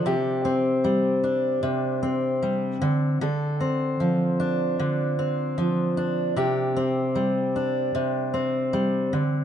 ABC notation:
X:1
M:4/4
L:1/8
Q:1/4=76
K:Ddor
V:1 name="Steel-string acoustic guitar" clef=bass
[C,G] C G, D C, C G, D, | [D,A] C F, D D, C F, D | [C,G] C G, D C, C G, D, |]